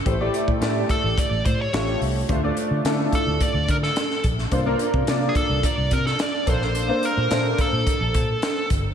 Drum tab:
HH |x-x-x-x-x-x-x-o-|x-x-x-x-x-x-x-x-|x-x-x-x-x-x-x-x-|x-x-x-x-x-x-x-x-|
SD |----o-------o---|----o------ooo-o|----o------oo--o|----o-------o---|
BD |o--o--o-o-o-----|o-----o-o-o---o-|o--o--o-o-o---o-|------o-o-o---o-|